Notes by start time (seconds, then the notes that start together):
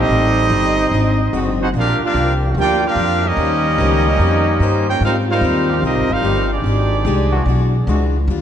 Already playing: D#3 A3 C4 D#4 G4
0.00 G3 C4 G4 A4 D#5
0.09 A1 A2 G3 C4 D#4
0.50 G1 A2 G3 C4 D#4
0.91 G#1 G#2 F#3 C4 D4
1.32 F#1 G#2 D3 F#3 G#3 C4 D4 F#4
1.61 C4 D#4 F#4 G#4 C5 F#5
1.74 A#1 G2 F3 A#3 D4 F4
1.79 D4 G4 A#4 F5
2.00 A#3 D4 F4, muted upright bass stroke
2.05 D4 G4 A#4 F5
2.14 C2 G2 F3 A#3 D4 G4
2.55 D2 G2 F3 A#3 D4 G4
2.59 A#3 D4 F4 A#4 D5 G5
2.83 A#3 D4 F4 G4 A#4 F5
2.87 D4
2.96 F2 G2 F3 A#3 D4
3.24 G3 A#3 C#4 D#4 G4 A#4 D#5
3.37 D#2 D#3 C#4 G4
3.41 C5
3.78 C#2 D#3 F3 C#4 G4 C5
4.19 F2 D#3 C#4 G4 C5
4.60 G2 D#3 C#4 G4 C5
4.89 A#3 C#4 F4 G4 A#4 C#5 G5
5.01 G#2 G3 C4 F4 F5
5.05 D#4 F4 A#4 C5
5.28 G3 C4 D#4 F4 A#4 C5 F5
5.41 D#2 G#2 G3 C4 F4
5.69 F3 A#3 C4 G4
5.82 C2 G#2 G3 C4 D#4 F4 G4 A#4 D#5
5.96 G#1
6.09 G1 G3 C4 D#4 F4 A#4 C5 F5
6.22 G1 G#2 F3 G3 A#3 C4 G4
6.26 F4
6.51 D#3 G#3 C4 D4 G4 G#4 D5
6.64 G#1 F3 G#3 D#4
6.68 G4
7.05 C2 F3 G#3 D#4 G4
7.32 E3 G#3 D4 F#4
7.46 B1 E3 G#3 D4
7.50 F#4
7.87 C#2 E3 G#3 D4 F#4
8.28 D#2 D#3 G3 D4 F4